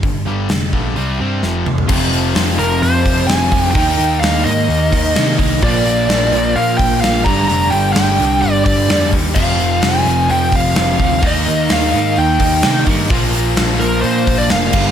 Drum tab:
CC |----------------|x---------------|----------------|----------------|
HH |o---o---o-------|--o-o-o-o-o-o-o-|o-o-o-o-o-o-o-o-|o-o---o-o---o-o-|
SD |----o-------o---|----o-------o---|----o-------o---|----o-------o---|
T2 |--------------o-|----------------|----------------|----------------|
FT |---------------o|----------------|----------------|----------------|
BD |o-----o---------|o---------o---o-|o---------o---o-|o---------o---o-|

CC |----------------|x---------------|----------------|--------------x-|
HH |o-o-o-o-o-o-o-o-|--o-o-o-o-o-o-o-|o-o-o-o-o-o-o-o-|o-o-o-o-o-o-o---|
SD |----o-------o---|----o-------o---|----o-------o---|----o-------o---|
T2 |----------------|----------------|----------------|----------------|
FT |----------------|----------------|----------------|----------------|
BD |----------o---o-|o---------o---o-|o---------o---o-|o---------o---o-|